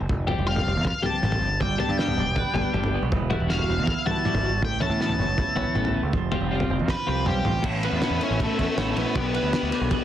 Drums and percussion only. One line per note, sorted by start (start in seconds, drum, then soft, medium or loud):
0.09 kick loud
0.09 floor tom medium
0.28 floor tom medium
0.56 floor tom medium
0.85 kick loud
0.85 floor tom medium
1.03 floor tom medium
1.23 mid tom medium
1.32 floor tom medium
1.60 kick loud
1.60 floor tom medium
1.80 floor tom medium
1.99 snare medium
2.08 floor tom medium
2.17 mid tom medium
2.36 kick loud
2.36 floor tom medium
2.56 floor tom medium
2.74 mid tom medium
2.84 floor tom medium
3.12 kick loud
3.12 floor tom medium
3.31 floor tom medium
3.50 snare medium
3.59 floor tom medium
3.87 kick loud
3.87 floor tom medium
4.07 floor tom medium
4.25 mid tom medium
4.35 floor tom medium
4.62 kick loud
4.62 floor tom medium
4.81 floor tom medium
5.01 snare medium
5.09 floor tom medium
5.19 mid tom medium
5.38 kick loud
5.38 floor tom medium
5.57 floor tom medium
5.75 mid tom medium
5.85 floor tom medium
6.13 kick loud
6.13 floor tom medium
6.32 floor tom loud
6.60 floor tom medium
6.88 kick loud
6.88 snare medium
7.26 mid tom loud
7.45 floor tom medium
7.64 kick loud
7.64 crash loud
7.83 ride medium
8.02 snare loud
8.02 ride medium
8.21 ride medium
8.40 kick loud
8.40 ride loud
8.59 kick medium
8.59 ride medium
8.78 snare loud
8.78 ride loud
8.97 ride medium
9.15 kick loud
9.15 ride medium
9.34 ride medium
9.53 snare loud
9.53 ride loud
9.72 snare soft
9.72 ride medium
9.91 kick loud
9.91 ride loud